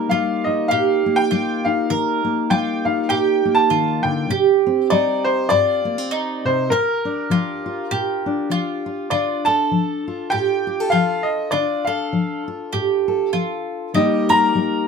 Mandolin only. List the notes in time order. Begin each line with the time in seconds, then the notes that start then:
0.11 F4
0.71 G4
1.31 F4
1.90 A#4
2.51 F4
3.10 G4
3.70 F4
4.31 G4
4.90 D#4
5.50 F4
6.11 D#4
6.72 A#4
7.31 F4
7.91 G4
8.51 F4
9.11 F4
9.46 A4
10.32 G4
10.92 F4
11.52 F4
11.87 A4
12.73 G4
13.33 F4
13.94 G4
14.29 A#4